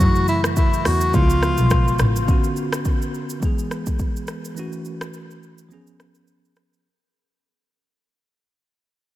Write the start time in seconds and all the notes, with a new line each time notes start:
Already playing: C#3 F#4
0.00 F#2 E3 F#3 A3 E4, kick, shaker
0.15 shaker
0.28 E4, shaker
0.44 cross-stick, shaker
0.56 E4, kick, shaker
0.74 shaker
0.85 E2 F#4, cross-stick, open hi-hat, shaker
1.01 shaker
1.12 C#2 C#3 F3 G#3 B3 F4, kick, shaker
1.17 E4
1.23 F4
1.30 shaker
1.43 cross-stick, shaker
1.58 B1, shaker
1.70 kick, cross-stick, shaker
1.88 shaker
1.99 A1, cross-stick, shaker
2.16 shaker
2.26 D3 B3 C#4, kick, shaker
2.31 F#4
2.44 shaker
2.56 shaker
2.73 cross-stick, shaker
2.85 kick, shaker
3.02 shaker
3.14 shaker
3.29 shaker
3.40 E3 G#3 B3, kick, shaker
3.45 G#4
3.58 shaker
3.71 cross-stick, shaker
3.86 kick, shaker
3.99 kick, shaker
4.16 shaker
4.27 cross-stick, shaker
4.45 shaker
4.54 E3 A3 C#4, shaker
4.59 F#4
4.73 shaker
4.85 shaker
5.01 cross-stick, shaker
5.13 shaker
5.31 shaker
5.43 shaker
5.58 shaker
5.69 F3 B3 C#4, shaker
5.74 G#4
5.87 shaker
6.00 cross-stick, shaker
6.15 shaker
6.27 shaker
6.45 shaker
6.56 cross-stick, shaker
6.73 shaker